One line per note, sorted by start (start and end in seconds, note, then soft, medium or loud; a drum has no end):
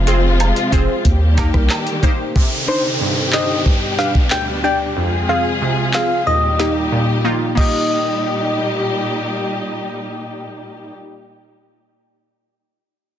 0.00 0.52 F1 loud
0.00 1.04 C3 medium
0.00 1.04 F3 medium
0.00 1.04 G#3 medium
0.00 1.04 F4 loud
0.07 0.20 C4 medium
0.07 0.20 F4 medium
0.07 0.21 G#4 medium
0.07 0.21 C5 loud
0.07 closed hi-hat medium
0.07 cabasa medium
0.40 closed hi-hat medium
0.40 high woodblock medium
0.56 closed hi-hat medium
0.72 0.87 F1 loud
0.72 0.85 C4 medium
0.72 0.86 F4 medium
0.72 0.86 G#4 medium
0.72 0.86 C5 loud
0.72 kick loud
0.72 closed hi-hat medium
0.72 cabasa medium
1.05 1.50 D#2 loud
1.05 2.34 D#3 medium
1.05 2.34 G3 medium
1.05 2.34 A#3 medium
1.05 2.34 G4 medium
1.05 kick medium
1.05 closed hi-hat medium
1.37 1.51 A#3 medium
1.37 1.51 D#4 medium
1.37 1.51 G4 medium
1.37 1.51 A#4 loud
1.37 kick loud
1.37 snare medium
1.37 closed hi-hat medium
1.37 cabasa medium
1.37 high woodblock medium
1.54 1.69 C2 medium
1.54 kick loud
1.54 cross-stick medium
1.70 snare loud
1.70 clap medium
1.70 closed hi-hat medium
1.70 high woodblock medium
1.87 closed hi-hat medium
2.03 2.16 A#3 medium
2.03 2.16 D#4 medium
2.03 2.16 G4 medium
2.03 2.16 C5 loud
2.03 kick loud
2.03 closed hi-hat medium
2.03 cabasa medium
2.36 2.84 C3 medium
2.36 3.65 C3 medium
2.36 3.65 D3 medium
2.36 3.65 D#3 medium
2.36 4.94 G4 medium
2.36 kick loud
2.36 downlifter medium
2.68 2.81 D4 medium
2.68 2.81 D#4 medium
2.68 2.82 C5 medium
3.01 3.49 G2 medium
3.33 3.46 D4 medium
3.33 3.47 D#4 medium
3.33 3.47 C5 medium
3.33 3.62 D#5 medium
3.33 snare loud
3.33 clap medium
3.66 4.15 G2 medium
3.66 4.95 B2 medium
3.66 4.95 G3 medium
3.66 4.95 D4 medium
3.66 kick medium
3.98 4.12 D4 medium
3.98 4.12 G4 medium
3.98 4.12 B4 medium
3.98 4.13 F5 medium
3.98 snare medium
4.15 kick medium
4.31 4.80 D2 medium
4.31 4.45 G5 medium
4.31 snare loud
4.31 clap medium
4.64 4.77 D4 medium
4.64 4.77 G4 medium
4.64 4.77 D5 medium
4.64 4.78 G5 medium
4.96 5.45 F2 medium
4.96 6.26 C3 medium
4.96 6.26 G#3 medium
4.96 6.26 F4 medium
4.96 6.26 G#4 medium
5.29 5.42 C4 medium
5.29 5.42 F4 medium
5.29 5.42 G#4 medium
5.29 5.43 F5 medium
5.62 6.10 C3 medium
5.94 6.07 C4 medium
5.94 6.07 F4 medium
5.94 6.08 G#4 medium
5.94 6.22 F5 medium
5.94 snare loud
5.94 clap medium
6.27 6.75 D#2 medium
6.27 7.56 A#2 medium
6.27 7.56 G3 medium
6.27 7.56 D#4 medium
6.27 7.56 G4 medium
6.27 6.73 D#5 loud
6.59 6.72 A#3 medium
6.59 6.73 D#4 medium
6.59 6.73 G4 medium
6.59 snare medium
6.92 7.41 A#2 medium
7.24 7.38 A#3 medium
7.24 7.38 D#4 medium
7.24 7.38 F4 loud
7.55 10.94 A#2 medium
7.55 10.94 G3 medium
7.55 11.63 A#3 medium
7.55 10.94 D#4 medium
7.55 11.64 D#4 medium
7.55 10.94 G4 medium
7.55 11.65 G4 medium
7.55 9.49 D#5 loud
7.55 kick loud
7.55 crash medium